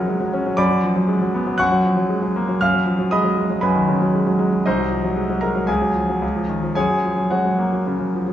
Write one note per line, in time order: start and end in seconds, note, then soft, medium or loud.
0.00 0.58 F#2 medium
0.00 0.61 C#3 soft
0.00 0.61 F3 soft
0.00 0.21 F#3 soft
0.00 0.08 G#3 soft
0.00 0.34 C#4 soft
0.00 0.29 A#4 soft
0.00 0.61 C#5 medium
0.00 0.61 D#5 medium
0.00 0.29 F#5 soft
0.00 0.61 A#5 medium
0.00 0.61 C#6 medium
0.00 0.61 D#6 medium
0.08 0.21 G#3 soft
0.21 0.41 F#3 soft
0.34 0.53 C#4 soft
0.46 0.59 F#3 soft
0.57 1.56 F#2 medium
0.57 1.55 D5 medium
0.57 1.55 B5 medium
0.57 1.58 D6 medium
0.71 0.91 F#3 soft
0.83 0.96 F3 soft
0.96 1.16 F#3 soft
1.08 1.21 G#3 soft
1.22 1.42 F#3 soft
1.34 1.54 B3 soft
1.47 1.59 F#3 soft
1.58 2.58 F#2 medium
1.58 2.57 F#5 medium
1.58 2.57 C#6 medium
1.58 2.60 F#6 medium
1.72 1.92 F#3 soft
1.84 1.97 F3 soft
1.97 2.17 F#3 soft
2.09 2.22 G#3 soft
2.22 2.43 F#3 soft
2.36 2.56 A#3 soft
2.49 2.61 F#3 soft
2.61 3.60 F#2 medium
2.61 3.09 F5 medium
2.61 3.12 F6 medium
2.74 2.94 F#3 soft
2.86 2.99 F3 soft
2.99 3.19 F#3 soft
3.11 3.25 G#3 soft
3.11 3.60 D#5 medium
3.11 3.60 B5 medium
3.11 3.63 D#6 medium
3.24 3.45 F#3 soft
3.37 3.57 G#3 soft
3.50 3.71 F#3 soft
3.61 4.62 F#2 soft
3.61 4.36 B4 soft
3.61 4.36 G#5 soft
3.61 4.39 B5 medium
3.75 3.96 D#3 soft
3.88 4.01 C#3 soft
4.02 4.22 F#3 soft
4.14 4.27 G#3 soft
4.27 4.47 F#3 soft
4.39 4.60 G#3 soft
4.53 4.65 F#3 soft
4.66 5.66 C2 medium
4.66 5.39 D#4 soft
4.66 5.39 C5 soft
4.66 5.42 D#5 medium
4.78 4.99 F#3 soft
4.92 5.04 F3 soft
5.04 5.25 F#3 soft
5.16 5.29 G#3 soft
5.30 5.50 F#3 soft
5.41 5.63 G#3 soft
5.41 5.67 A#4 soft
5.41 5.68 A#5 medium
5.55 5.69 F#3 soft
5.67 6.20 C#2 medium
5.67 6.73 G#4 soft
5.67 6.74 G#5 medium
5.82 6.04 F#3 soft
5.95 6.09 F3 soft
6.09 6.23 F#3 soft
6.22 6.75 C#2 soft
6.36 6.58 F3 soft
6.49 6.63 D#3 soft
6.63 6.77 F3 soft
6.75 7.83 F#2 soft
6.75 7.28 G#4 soft
6.75 7.28 C#5 soft
6.75 7.31 G#5 medium
6.90 7.12 F#3 soft
7.04 7.18 F3 soft
7.18 7.40 F#3 soft
7.31 7.45 G#3 soft
7.31 8.33 F#4 soft
7.31 8.33 C#5 soft
7.31 8.33 F#5 soft
7.45 7.67 F#3 soft
7.59 7.81 A#3 soft
7.73 7.94 F#3 soft
7.87 8.08 C#3 soft
8.00 8.22 F#3 soft
8.15 8.28 F3 soft
8.28 8.33 F#3 soft